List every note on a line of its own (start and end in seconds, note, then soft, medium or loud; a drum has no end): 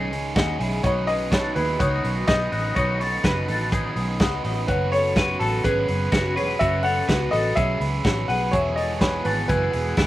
0.00 0.12 B1 loud
0.00 0.12 C#3 medium
0.00 4.64 D#3 medium
0.00 0.12 G#3 medium
0.00 0.80 G#3 medium
0.00 0.12 C#4 loud
0.00 2.72 C#4 medium
0.00 0.12 D#4 medium
0.00 0.10 G#4 medium
0.00 0.80 G#4 medium
0.00 0.31 C#5 medium
0.11 0.32 C#2 medium
0.11 0.34 C#4 medium
0.11 0.35 D#4 medium
0.11 0.36 G#4 medium
0.11 open hi-hat medium
0.34 0.56 D#2 loud
0.34 0.59 G#3 medium
0.34 0.60 C#4 medium
0.34 0.59 D#4 medium
0.34 0.60 F#4 loud
0.34 0.58 G#4 medium
0.34 kick loud
0.34 snare loud
0.34 hi-hat pedal medium
0.34 ride medium
0.59 0.80 B1 loud
0.59 0.83 C#4 medium
0.59 0.84 D#4 medium
0.59 0.84 E4 medium
0.59 0.84 G#4 medium
0.59 open hi-hat medium
0.83 1.53 B1 loud
0.83 1.08 B2 medium
0.83 1.08 D#3 medium
0.83 1.08 F#3 medium
0.83 8.49 B3 medium
0.83 1.08 C#4 medium
0.83 1.07 D#4 medium
0.83 10.07 F#4 medium
0.83 1.08 F#4 loud
0.83 1.06 B4 medium
0.83 1.06 C#5 loud
0.83 kick loud
0.83 hi-hat pedal medium
0.83 ride medium
1.07 1.30 F#3 soft
1.07 1.31 C#4 soft
1.07 1.32 D#4 medium
1.07 1.31 G#4 medium
1.07 1.32 B4 soft
1.07 1.32 D#5 loud
1.07 open hi-hat medium
1.31 1.56 F#3 medium
1.31 1.56 C#4 medium
1.31 1.55 D#4 medium
1.31 1.56 F#4 medium
1.31 1.56 A4 medium
1.31 1.55 B4 medium
1.31 1.56 C#5 medium
1.31 kick loud
1.31 snare loud
1.31 hi-hat pedal medium
1.31 ride medium
1.55 1.76 D#2 medium
1.55 1.80 F#3 medium
1.55 1.80 C#4 medium
1.55 1.80 D#4 medium
1.55 1.81 E4 medium
1.55 1.79 G#4 medium
1.55 1.80 B4 loud
1.55 1.80 B4 medium
1.55 open hi-hat medium
1.79 2.01 C#2 medium
1.79 2.04 B2 medium
1.79 2.04 D#3 medium
1.79 2.05 F#3 medium
1.79 2.04 C#4 medium
1.79 2.03 D#4 loud
1.79 2.25 F#4 medium
1.79 2.02 B4 medium
1.79 2.29 C#5 loud
1.79 kick loud
1.79 hi-hat pedal medium
1.79 ride medium
2.04 2.25 B1 medium
2.04 2.27 F#3 soft
2.04 2.28 C#4 medium
2.04 2.28 D#4 medium
2.04 2.28 B4 medium
2.04 open hi-hat medium
2.27 2.48 B1 medium
2.27 2.52 F#3 medium
2.27 2.52 B3 medium
2.27 2.53 C#4 medium
2.27 2.52 D#4 medium
2.27 2.51 B4 medium
2.27 2.72 D#5 loud
2.27 kick loud
2.27 snare loud
2.27 hi-hat pedal medium
2.27 ride medium
2.52 2.73 A1 medium
2.52 2.76 F#3 soft
2.52 2.76 C#4 soft
2.52 2.76 D#4 medium
2.52 2.75 F#4 medium
2.52 2.76 B4 medium
2.52 open hi-hat medium
2.75 3.17 B1 loud
2.75 3.00 B2 medium
2.75 3.00 D#3 medium
2.75 3.01 F#3 medium
2.75 3.00 C#4 medium
2.75 4.67 D#4 medium
2.75 2.99 D#4 medium
2.75 3.00 F#4 loud
2.75 2.98 B4 medium
2.75 3.20 C#5 loud
2.75 kick loud
2.75 hi-hat pedal medium
2.75 ride medium
3.00 3.23 F#3 soft
3.00 3.24 C#4 soft
3.00 3.24 D#4 medium
3.00 3.25 A4 medium
3.00 3.24 B4 soft
3.00 3.24 C#5 medium
3.00 open hi-hat medium
3.24 3.45 F#1 medium
3.24 3.48 F#3 medium
3.24 3.49 C#4 medium
3.24 3.49 D#4 medium
3.24 3.48 F#4 medium
3.24 4.40 B4 medium
3.24 3.47 B4 medium
3.24 kick loud
3.24 snare loud
3.24 hi-hat pedal medium
3.24 ride medium
3.48 3.89 A1 medium
3.48 3.71 F#3 soft
3.48 3.72 C#4 soft
3.48 3.72 D#4 medium
3.48 3.73 F#4 soft
3.48 3.72 A4 medium
3.48 3.72 B4 medium
3.48 open hi-hat medium
3.72 3.96 B2 medium
3.72 3.96 D#3 medium
3.72 3.97 F#3 medium
3.72 3.96 C#4 medium
3.72 3.95 D#4 medium
3.72 4.17 G#4 medium
3.72 3.95 B4 medium
3.72 kick loud
3.72 hi-hat pedal medium
3.72 ride medium
3.96 4.20 B1 medium
3.96 4.19 F#3 soft
3.96 4.20 C#4 soft
3.96 4.20 D#4 medium
3.96 4.20 B4 medium
3.96 open hi-hat medium
4.20 4.41 C#2 medium
4.20 4.44 F#3 medium
4.20 4.45 C#4 medium
4.20 4.44 D#4 medium
4.20 4.43 F#4 medium
4.20 4.43 B4 medium
4.20 kick loud
4.20 snare loud
4.20 hi-hat pedal medium
4.20 ride medium
4.44 4.65 A1 medium
4.44 4.67 F#3 soft
4.44 4.68 C#4 medium
4.44 4.69 D#4 medium
4.44 4.68 F#4 medium
4.44 4.68 B4 medium
4.44 open hi-hat medium
4.68 5.37 F#1 loud
4.68 8.49 C#3 medium
4.68 4.92 F#3 medium
4.68 8.49 F#3 medium
4.68 4.93 C#4 medium
4.68 4.92 F#4 medium
4.68 4.93 B4 loud
4.68 4.90 B4 medium
4.68 kick loud
4.68 hi-hat pedal medium
4.68 ride medium
4.92 5.15 C#4 soft
4.92 5.16 F#4 soft
4.92 5.17 A4 medium
4.92 5.16 B4 medium
4.92 5.42 C#5 loud
4.92 5.16 C#5 medium
4.92 open hi-hat medium
5.15 5.40 F#3 medium
5.15 5.41 C#4 medium
5.15 5.39 F#4 medium
5.15 5.38 B4 medium
5.15 kick loud
5.15 snare loud
5.15 hi-hat pedal medium
5.15 ride medium
5.39 5.61 A1 medium
5.39 5.63 C#4 medium
5.39 5.64 F#4 medium
5.39 5.62 A4 loud
5.39 5.64 A4 medium
5.39 5.64 B4 medium
5.39 open hi-hat medium
5.64 5.85 G#1 loud
5.64 5.88 F#3 medium
5.64 5.89 C#4 medium
5.64 5.89 F#4 medium
5.64 6.10 G#4 medium
5.64 6.39 B4 loud
5.64 5.87 B4 medium
5.64 kick loud
5.64 hi-hat pedal medium
5.64 ride medium
5.88 6.09 F#1 medium
5.88 6.12 C#4 soft
5.88 6.13 F#4 medium
5.88 6.12 B4 medium
5.88 open hi-hat medium
6.12 6.37 F#1 medium
6.12 6.36 F#3 medium
6.12 6.37 C#4 medium
6.12 6.36 F#4 medium
6.12 6.34 B4 medium
6.12 kick loud
6.12 snare loud
6.12 hi-hat pedal medium
6.12 ride medium
6.36 6.57 E1 medium
6.36 6.59 C#4 soft
6.36 6.60 F#4 medium
6.36 6.60 G#4 medium
6.36 6.60 B4 medium
6.36 6.61 C#5 medium
6.36 open hi-hat medium
6.59 7.01 F#1 loud
6.59 6.84 F#3 medium
6.59 6.85 C#4 medium
6.59 6.84 F#4 medium
6.59 6.82 B4 medium
6.59 6.82 E5 loud
6.59 kick loud
6.59 hi-hat pedal medium
6.59 ride medium
6.83 7.08 C#4 soft
6.83 7.09 F#4 soft
6.83 7.09 A4 medium
6.83 7.08 B4 medium
6.83 7.08 C#5 medium
6.83 7.28 F#5 loud
6.83 open hi-hat medium
7.08 7.29 C#2 medium
7.08 7.32 F#3 medium
7.08 7.33 C#4 medium
7.08 7.33 F#4 medium
7.08 7.31 B4 medium
7.08 kick loud
7.08 snare loud
7.08 hi-hat pedal medium
7.08 ride medium
7.31 7.53 A1 medium
7.31 7.55 C#4 medium
7.31 7.56 F#4 medium
7.31 7.56 A4 medium
7.31 7.56 B4 medium
7.31 7.57 D#5 loud
7.31 open hi-hat medium
7.55 7.77 B1 loud
7.55 7.81 F#3 medium
7.55 7.81 C#4 medium
7.55 7.80 F#4 medium
7.55 8.02 G#4 medium
7.55 7.79 B4 medium
7.55 8.24 E5 loud
7.55 kick loud
7.55 hi-hat pedal medium
7.55 ride medium
7.80 8.01 C#2 medium
7.80 8.05 C#4 soft
7.80 8.05 F#4 soft
7.80 8.05 B4 medium
7.80 open hi-hat medium
8.05 8.25 A1 medium
8.05 8.29 F#3 medium
8.05 8.29 C#4 medium
8.05 8.29 F#4 medium
8.05 8.27 B4 medium
8.05 kick loud
8.05 snare loud
8.05 hi-hat pedal medium
8.05 ride medium
8.28 8.55 B1 medium
8.28 8.53 C#4 soft
8.28 8.53 F#4 medium
8.28 8.52 G#4 medium
8.28 8.53 B4 medium
8.28 8.53 F#5 loud
8.28 open hi-hat medium
8.51 9.22 E1 loud
8.51 8.77 E3 medium
8.51 10.07 E3 medium
8.51 8.77 F#3 medium
8.51 10.07 G#3 medium
8.51 10.07 B3 medium
8.51 8.77 B3 medium
8.51 8.77 E4 medium
8.51 8.77 F#4 medium
8.51 8.75 G#4 medium
8.51 8.77 C#5 loud
8.51 kick loud
8.51 hi-hat pedal medium
8.51 ride medium
8.76 9.01 B3 soft
8.76 9.02 F#4 medium
8.76 9.01 G#4 medium
8.76 9.01 A4 medium
8.76 9.01 C#5 medium
8.76 9.01 D#5 loud
8.76 open hi-hat medium
9.00 9.25 F#3 medium
9.00 9.26 B3 medium
9.00 9.25 F#4 medium
9.00 9.23 G#4 medium
9.00 9.25 B4 medium
9.00 9.25 C#5 medium
9.00 kick loud
9.00 snare loud
9.00 hi-hat pedal medium
9.00 ride medium
9.24 9.46 G#1 medium
9.24 9.49 B3 medium
9.24 9.49 F#4 medium
9.24 9.49 G#4 medium
9.24 9.49 A4 medium
9.24 9.30 B4 loud
9.24 open hi-hat medium
9.48 9.70 F#1 medium
9.48 9.73 E3 medium
9.48 9.73 F#3 medium
9.48 9.74 B3 medium
9.48 9.95 E4 medium
9.48 9.73 F#4 medium
9.48 9.72 G#4 medium
9.48 10.07 B4 loud
9.48 kick loud
9.48 hi-hat pedal medium
9.48 ride medium
9.73 9.94 E1 loud
9.73 9.97 B3 medium
9.73 9.98 F#4 medium
9.73 9.97 G#4 medium
9.73 open hi-hat medium
9.97 10.07 F#1 loud
9.97 10.07 F#3 medium
9.97 10.07 B3 medium
9.97 10.07 E4 medium
9.97 10.07 F#4 medium
9.97 10.07 G#4 medium
9.97 kick loud
9.97 snare loud
9.97 hi-hat pedal medium
9.97 ride medium